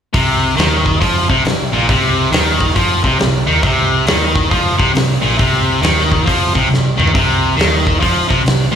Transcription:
0.13 picked electric bass C2, distorted electric guitar C3, kick, open hi-hat
0.57 picked electric bass D#2, distorted electric guitar D#3, snare, open hi-hat
0.74 snare
0.86 kick
1.00 picked electric bass F2, distorted electric guitar F3, kick, open hi-hat
1.29 picked electric bass C2, distorted electric guitar C3, kick
1.44 picked electric bass C2, distorted electric guitar C3, snare, open hi-hat
1.72 picked electric bass A#1, distorted electric guitar A#2
1.89 picked electric bass C2, distorted electric guitar C3, kick, open hi-hat
2.31 picked electric bass D#2, distorted electric guitar D#3, snare, open hi-hat
2.60 kick
2.70 snare
2.75 picked electric bass F2, distorted electric guitar F3, kick, open hi-hat
3.04 picked electric bass C2, distorted electric guitar C3, kick
3.19 picked electric bass C2, distorted electric guitar C3, snare, open hi-hat
3.47 picked electric bass D#2, distorted electric guitar D#3
3.63 picked electric bass C2, distorted electric guitar C3, kick, open hi-hat
4.07 picked electric bass D#2, distorted electric guitar D#3, snare, open hi-hat
4.36 kick
4.51 picked electric bass F2, distorted electric guitar F3, kick, open hi-hat
4.78 picked electric bass C2, distorted electric guitar C3, kick
4.94 picked electric bass C2, distorted electric guitar C3, snare, open hi-hat
5.22 picked electric bass A#1, distorted electric guitar A#2
5.38 picked electric bass C2, distorted electric guitar C3, kick, open hi-hat
5.82 picked electric bass D#2, distorted electric guitar D#3, snare, open hi-hat
6.00 snare
6.12 kick
6.26 picked electric bass F2, distorted electric guitar F3, kick, open hi-hat
6.55 picked electric bass C2, distorted electric guitar C3, kick
6.70 picked electric bass C2, distorted electric guitar C3, snare
6.97 picked electric bass D#2, distorted electric guitar D#3, mid tom
7.07 floor tom
7.14 picked electric bass C2, distorted electric guitar C3, kick, open hi-hat
7.57 picked electric bass D#2, distorted electric guitar D#3, open hi-hat
7.61 snare
7.75 snare
7.87 kick
8.00 picked electric bass F2, distorted electric guitar F3, kick, open hi-hat
8.29 picked electric bass C2, distorted electric guitar C3, kick
8.44 picked electric bass C2, distorted electric guitar C3, open hi-hat
8.48 snare
8.72 distorted electric guitar A#2

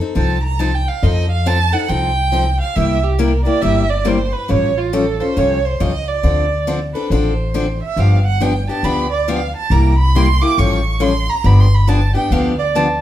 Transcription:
0.00 steel-string acoustic guitar C4 D#4 A4
0.15 upright bass C2, steel-string acoustic guitar F3 C4 D#4 A4, violin A5
0.43 violin A#5
0.59 steel-string acoustic guitar F3 C4 D#4 A4, violin A5
0.75 violin G5
0.88 violin F5
1.03 upright bass F2, steel-string acoustic guitar F3 C4 D#4 A4, violin D#5
1.31 violin F5
1.46 steel-string acoustic guitar F3 C4 D#4 A4, violin A5
1.72 steel-string acoustic guitar C4 D#4 A4, violin F#5
1.88 upright bass C2, steel-string acoustic guitar F3 C4 D#4 A4, violin G5
2.32 steel-string acoustic guitar F3 C4 D#4 A4
2.61 violin F5
2.76 upright bass C2, steel-string acoustic guitar C3 G3 A#3 E4 G4, violin E5
3.04 violin G4
3.19 steel-string acoustic guitar C3 G3 A#3 E4 G4, violin A#4
3.45 steel-string acoustic guitar A#3 E4 G4, violin D5
3.62 upright bass G1, steel-string acoustic guitar C3 G3 A#3 E4 G4, violin E5
3.90 violin D5
4.05 steel-string acoustic guitar C3 G3 A#3 E4 G4, violin C5
4.33 violin B4
4.48 upright bass A1, steel-string acoustic guitar F3 G3 C#4 F4 A4, violin C#5
4.78 violin F4
4.93 steel-string acoustic guitar F3 G3 C#4 F4 A4, violin A4
5.20 steel-string acoustic guitar C#4 F4 A4, violin C5
5.37 upright bass C2, steel-string acoustic guitar F3 G3 C#4 F4 A4, violin C#5
5.65 violin C5
5.80 upright bass C#2, steel-string acoustic guitar F3 G3 C#4 F4 A4, violin D#5
6.08 violin D5
6.23 upright bass D2, steel-string acoustic guitar D3 F3 C4 D4 A4
6.67 steel-string acoustic guitar D3 F3 C4 D4 A4
6.94 steel-string acoustic guitar C4 D4 A4, violin B4
7.10 upright bass A1, steel-string acoustic guitar D3 F3 C4 D4 A4, violin C5
7.54 steel-string acoustic guitar D3 F3 C4 D4 A4
7.83 violin E5
7.96 upright bass G1, steel-string acoustic guitar D3 F3 B3 D4 G4, violin F5
8.26 violin F#5
8.40 steel-string acoustic guitar D3 F3 B3 D4 G4, violin G5
8.69 steel-string acoustic guitar B3 D4 G4, violin A5
8.83 upright bass D2, steel-string acoustic guitar D3 F3 B3 D4 G4, violin B5
9.12 violin D5
9.28 steel-string acoustic guitar D3 F3 B3 D4 G4, violin F5
9.57 violin A5
9.70 upright bass C2, steel-string acoustic guitar C3 G3 A#3 E4 G4, violin A#5
9.98 violin B5
10.15 steel-string acoustic guitar C3 G3 A#3 E4 G4, violin C6
10.42 steel-string acoustic guitar A#3 E4 G4, violin D6
10.58 upright bass A1, steel-string acoustic guitar F3 G3 C#4 F4 A4, violin C#6
11.00 steel-string acoustic guitar F3 G3 C#4 F4 A4, violin C6
11.30 violin A#5
11.44 upright bass G1, steel-string acoustic guitar D3 F3 B3 D4 G4, violin B5
11.60 violin C6
11.74 violin B5
11.87 steel-string acoustic guitar D3 F3 B3 D4 G4, violin A5
12.14 steel-string acoustic guitar B3 D4 G4, violin G5
12.31 upright bass D2, steel-string acoustic guitar D3 F3 B3 D4 G4, violin F5
12.59 violin D5
12.75 steel-string acoustic guitar D3 F3 B3 D4 G4, clarinet A5

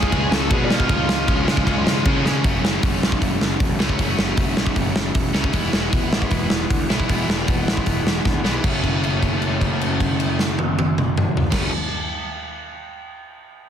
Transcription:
Already playing: picked electric bass C#2, overdriven electric guitar C#3 F3 G#3 C#4, lead electric guitar G#4 G#5
0.03 kick
0.11 picked electric bass C#2, overdriven electric guitar C#3 F3 G#3 C#4, kick, ride
0.31 picked electric bass C#2, lead electric guitar A4 A5, snare
0.51 picked electric bass B2, overdriven electric guitar C#3 F3 G#3 C#4, lead electric guitar G#4 G#5, kick, ride
0.64 lead electric guitar D5
0.70 overdriven electric guitar C#3 F3 G#3 C#4, lead electric guitar F4 F5, snare
0.80 kick
0.89 picked electric bass C#2, overdriven electric guitar C#3 F3 G#3 C#4, kick, ride
1.09 snare
1.27 picked electric bass C#2, overdriven electric guitar C#3 F3 G#3 C#4, kick, ride
1.47 picked electric bass C#2, overdriven electric guitar C#3 F3 G#3 C#4, snare
1.57 kick
1.66 picked electric bass C#2, overdriven electric guitar C#3 F3 G#3 C#4, kick, ride
1.86 picked electric bass C#2, snare
2.06 overdriven electric guitar C#3 F3 G#3 C#4, picked electric bass C#3, kick, ride
2.24 picked electric bass C#3, overdriven electric guitar C#3 F3 G#3 C#4, snare
2.44 picked electric bass F#1, overdriven electric guitar F#2 C#3 F#3 A3 C#4, kick, open hi-hat
2.63 picked electric bass F#1, snare
2.83 picked electric bass F#1, kick, open hi-hat
3.02 picked electric bass B1, snare
3.12 kick
3.22 picked electric bass F#1, kick, open hi-hat
3.41 picked electric bass F#1, snare
3.60 picked electric bass E1, kick, open hi-hat
3.79 picked electric bass C#2, overdriven electric guitar F#2 C#3 F#3 A3 C#4, snare
3.89 kick
3.99 picked electric bass F#1, overdriven electric guitar F#2 C#3 F#3 A3 C#4, kick, open hi-hat
4.18 picked electric bass F#1, snare
4.37 picked electric bass F#1, kick, open hi-hat
4.57 picked electric bass B1, snare
4.67 kick
4.76 picked electric bass F#1, kick, open hi-hat
4.96 picked electric bass F#1, snare
5.15 picked electric bass E1, kick, open hi-hat
5.33 picked electric bass C#2, overdriven electric guitar F#2 C#3 F#3 A3 C#4, snare
5.44 kick
5.52 picked electric bass E1, overdriven electric guitar E3 G#3 B3 E4, kick, open hi-hat
5.73 picked electric bass E1, snare
5.93 picked electric bass E1, kick, open hi-hat
6.11 picked electric bass A1, snare
6.22 kick
6.31 picked electric bass E1, kick, open hi-hat
6.50 picked electric bass E1, snare
6.70 picked electric bass D2, kick, open hi-hat
6.89 picked electric bass B1, overdriven electric guitar E3 G#3 B3 E4, snare
7.00 kick
7.08 picked electric bass E1, overdriven electric guitar E3 G#3 B3 E4, kick, open hi-hat
7.29 picked electric bass E1, snare
7.48 picked electric bass E1, kick, open hi-hat
7.67 picked electric bass A1, snare
7.77 kick
7.86 picked electric bass E1, kick, open hi-hat
8.05 picked electric bass E1, snare
8.25 picked electric bass D2, kick, snare
8.44 picked electric bass B1, overdriven electric guitar E3 G#3 B3 E4, snare
8.63 picked electric bass F#1, overdriven electric guitar F#2 C#3 F#3 A3 C#4, kick, crash
8.84 kick, crash
9.04 crash
9.23 kick, crash
9.42 crash
9.61 kick, crash
9.81 crash
10.00 kick, crash
10.20 crash
10.39 snare
10.59 high tom
10.79 high tom
10.98 mid tom
11.17 mid tom
11.37 floor tom
11.50 picked electric bass F#1, overdriven electric guitar F#2 C#3 F#3 A3, kick, snare, crash
11.54 overdriven electric guitar C#4

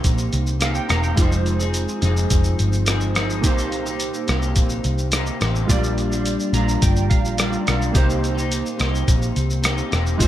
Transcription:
Already playing: clean electric guitar C3 A#3 D#4 G4, synth keys A#3 D#4 G4 C5
0.04 picked electric bass A#1, kick, closed hi-hat, shaker
0.18 shaker
0.33 picked electric bass C2, closed hi-hat, shaker
0.47 shaker
0.60 clean electric guitar C3 A#3 D#4 G4, synth keys F5, cross-stick, closed hi-hat, shaker
0.75 synth keys G5, shaker
0.88 picked electric bass E1, clean electric guitar C3 A#3 D#4 G4, synth keys A#5, cross-stick, closed hi-hat, shaker
1.03 synth keys G5, shaker
1.16 picked electric bass F1, clean electric guitar F3 C4 D#4 G#4, synth keys G#3 D#4 F4, kick, closed hi-hat, shaker
1.21 synth keys C5
1.32 shaker
1.46 closed hi-hat, shaker
1.59 clean electric guitar C4 D#4 G#4, shaker
1.74 closed hi-hat, shaker
1.88 shaker
2.01 picked electric bass F1, clean electric guitar F3 C4 D#4 G#4, closed hi-hat, shaker
2.17 shaker
2.30 picked electric bass F1, kick, closed hi-hat, shaker
2.44 shaker
2.59 picked electric bass G1, closed hi-hat, shaker
2.73 shaker
2.86 clean electric guitar F3 C4 D#4 G#4, cross-stick, closed hi-hat, shaker
3.01 shaker
3.14 clean electric guitar F3 C4 D#4 G#4, cross-stick, closed hi-hat, shaker
3.30 shaker
3.41 picked electric bass C2, clean electric guitar C3 A#3 D#4 G4, synth keys A#3 D#4 G4, kick, closed hi-hat, shaker
3.46 synth keys C5
3.58 shaker
3.72 closed hi-hat, shaker
3.85 clean electric guitar A#3 D#4 G4, shaker
4.00 closed hi-hat, shaker
4.14 shaker
4.27 picked electric bass C2, clean electric guitar C3 A#3 D#4 G4, cross-stick, closed hi-hat, shaker
4.42 shaker
4.56 picked electric bass A#1, kick, closed hi-hat, shaker
4.69 shaker
4.84 picked electric bass C2, closed hi-hat, shaker
4.98 shaker
5.12 clean electric guitar C3 A#3 D#4 G4, cross-stick, closed hi-hat, shaker
5.26 shaker
5.40 picked electric bass A1, clean electric guitar C3 A#3 D#4 G4, cross-stick, closed hi-hat, shaker
5.55 shaker
5.66 picked electric bass A#1, clean electric guitar A#2 G3 D4, synth keys G#3 F4 G4, kick, closed hi-hat, shaker
5.71 synth keys A#3 D5, clean electric guitar F4
5.84 shaker
5.98 closed hi-hat, shaker
6.10 clean electric guitar G3 D4 F4, shaker
6.26 closed hi-hat, shaker
6.40 shaker
6.53 picked electric bass A#1, clean electric guitar A#2 G3 D4 F4, synth keys A#5, closed hi-hat, shaker
6.69 shaker
6.82 picked electric bass G1, synth keys G5, kick, closed hi-hat, shaker
6.96 shaker
7.10 picked electric bass A#1, synth keys F5, kick, closed hi-hat, shaker
7.25 shaker
7.37 clean electric guitar A#2 G3 D4 F4, synth keys D5, cross-stick, closed hi-hat, shaker
7.53 shaker
7.65 picked electric bass B1, clean electric guitar A#2 G3 D4 F4, cross-stick, closed hi-hat, shaker
7.82 shaker
7.92 picked electric bass C2, clean electric guitar C3 A#3 D#4 G4, synth keys A#3 D#4 G4, kick, closed hi-hat, shaker
7.97 synth keys C5
8.10 shaker
8.24 closed hi-hat, shaker
8.35 clean electric guitar A#3 D#4 G4, shaker
8.52 closed hi-hat, shaker
8.66 shaker
8.78 picked electric bass C2, clean electric guitar C3 A#3 D#4 G4, cross-stick, closed hi-hat, shaker
8.95 shaker
9.08 picked electric bass A#1, kick, closed hi-hat, shaker
9.22 shaker
9.36 picked electric bass C2, closed hi-hat, shaker
9.50 shaker
9.62 clean electric guitar C3 A#3 D#4 G4, cross-stick, closed hi-hat, shaker
9.78 shaker
9.89 picked electric bass E1, clean electric guitar C3 A#3 D#4 G4, cross-stick, closed hi-hat, shaker
10.07 shaker
10.18 picked electric bass F1, clean electric guitar F3 C4 D#4 G#4, synth keys G#3 D#4 F4, kick, closed hi-hat, shaker
10.22 synth keys C5

